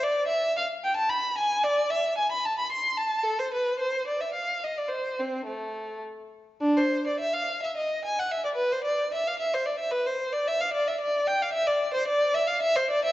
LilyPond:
\new Staff \with { instrumentName = "Violin" } { \time 3/4 \key d \dorian \tempo 4 = 110 d''8 e''8 f''8 g''16 a''16 b''8 gis''8 | d''8 e''8 gis''16 b''16 a''16 b''16 c'''8 a''8 | a'16 c''16 b'8 c''8 d''16 e''16 f''8 dis''16 d''16 | c''8 c'8 a4 r4 |
d'16 c''8 d''16 e''16 f''8 e''16 dis''8 gis''16 fis''16 | e''16 d''16 b'16 c''16 d''8 e''16 f''16 e''16 c''16 d''16 e''16 | b'16 c''8 d''16 e''16 f''16 d''16 e''16 d''8 g''16 f''16 | e''16 d''8 c''16 d''8 e''16 f''16 e''16 c''16 d''16 e''16 | }